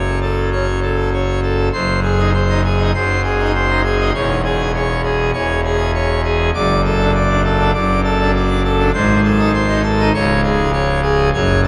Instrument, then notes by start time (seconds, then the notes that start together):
pipe organ
Already playing: F#1 F#2 C#5
0.22 A4
0.52 C#3 C#5
0.83 A4
1.13 C#5
1.43 A4
1.73 F#1 F#2 C5
2.03 G#4
2.19 D#4
2.34 C5
2.49 D#4
2.64 G#4
2.79 D#4
2.94 F#1 F#2 C5
3.24 G#4
3.40 D#4
3.54 C5
3.70 D#4
3.84 G#4
4.00 D#4
4.15 E1 E2 C#5
4.45 G#4
4.75 C#5
5.04 G#4
5.34 E1 E2 C#5
5.65 G#4
5.94 C#5
6.24 G#4
6.55 F#1 F#2 D5
6.85 A4
7.00 D4
7.14 D5
7.29 D4
7.44 A4
7.59 D4
7.74 F#1 F#2 D5
8.04 A4
8.20 D4
8.35 D5
8.50 D4
8.64 A4
8.79 D4
8.94 G#1 G#2 C5
9.24 A4
9.39 D#4
9.54 C5
9.69 D#4
9.84 A4
10.00 D#4
10.14 C#1 C#2 C#5
10.44 G#4
10.73 C#5
11.03 G#4
11.34 F#1 F#2 C#5
11.64 A4